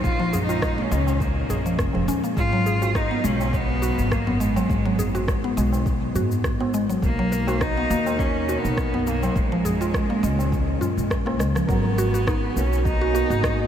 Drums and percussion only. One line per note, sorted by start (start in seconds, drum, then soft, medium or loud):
0.04 kick loud
0.04 cabasa soft
0.33 tabla ge loud
0.33 cabasa medium
0.49 tabla na medium
0.49 cabasa soft
0.62 kick loud
0.62 cross-stick medium
0.62 cabasa soft
0.92 cabasa medium
1.07 tabla na medium
1.07 cabasa soft
1.20 kick loud
1.20 cabasa soft
1.49 tabla na soft
1.49 tabla tin soft
1.49 tabla ge loud
1.49 cabasa medium
1.66 cabasa soft
1.78 kick loud
1.78 cross-stick loud
1.78 cabasa soft
1.93 tabla na medium
2.08 cabasa medium
2.24 cabasa soft
2.37 kick loud
2.37 cabasa soft
2.67 cabasa medium
2.82 tabla na medium
2.82 cabasa soft
2.95 kick loud
2.95 cross-stick medium
2.95 cabasa soft
3.25 cabasa medium
3.40 tabla na medium
3.40 tabla tin soft
3.40 cabasa soft
3.53 kick loud
3.53 cabasa soft
3.83 tabla na soft
3.83 cabasa medium
3.99 cabasa soft
4.11 kick loud
4.11 cross-stick medium
4.11 cabasa soft
4.27 tabla tin soft
4.27 tabla ge medium
4.41 cabasa medium
4.56 tabla na medium
4.56 cabasa soft
4.70 kick loud
4.70 cabasa soft
4.98 tabla ge medium
4.98 cabasa medium
5.14 tabla na medium
5.14 cabasa soft
5.28 kick loud
5.28 cross-stick medium
5.28 cabasa soft
5.58 cabasa medium
5.72 tabla na medium
5.72 cabasa soft
5.86 kick loud
5.86 cabasa soft
6.15 tabla tin soft
6.15 tabla ge medium
6.15 cabasa medium
6.31 cabasa soft
6.44 kick loud
6.44 cross-stick medium
6.44 cabasa soft
6.61 tabla na medium
6.74 cabasa medium
6.89 tabla tin soft
6.89 cabasa soft
7.02 kick loud
7.02 cabasa soft
7.32 cabasa medium
7.47 tabla na medium
7.47 cabasa soft
7.61 kick loud
7.61 cross-stick medium
7.61 cabasa soft
7.91 cabasa medium
8.06 tabla na medium
8.06 tabla tin soft
8.06 cabasa soft
8.19 kick loud
8.19 cabasa soft
8.48 tabla na soft
8.48 cabasa medium
8.65 cabasa soft
8.77 kick loud
8.77 cross-stick medium
8.77 cabasa soft
8.93 tabla tin soft
8.93 tabla ge medium
9.07 cabasa medium
9.23 tabla na medium
9.23 cabasa soft
9.36 kick loud
9.36 cabasa soft
9.52 tabla tin soft
9.65 tabla ge medium
9.65 cabasa medium
9.81 tabla na medium
9.81 cabasa soft
9.94 kick loud
9.94 cross-stick loud
9.94 cabasa soft
10.24 cabasa medium
10.39 tabla na medium
10.39 tabla tin soft
10.39 cabasa soft
10.52 kick loud
10.52 cabasa soft
10.81 tabla na soft
10.81 tabla tin soft
10.81 tabla ge medium
10.81 cabasa medium
10.98 cabasa soft
11.10 kick loud
11.10 cross-stick loud
11.10 cabasa soft
11.27 cross-stick medium
11.27 tabla na medium
11.40 cross-stick medium
11.40 cabasa medium
11.56 cross-stick medium
11.56 tabla tin medium
11.56 cabasa soft
11.69 kick loud
11.69 cabasa soft
11.98 cabasa medium
12.15 cabasa soft
12.27 kick loud
12.27 cross-stick loud
12.27 cabasa soft
12.57 cabasa medium
12.73 cabasa soft
12.85 kick loud
12.85 cabasa soft
13.15 cabasa medium
13.31 cabasa soft
13.43 kick loud
13.43 cross-stick loud
13.43 cabasa soft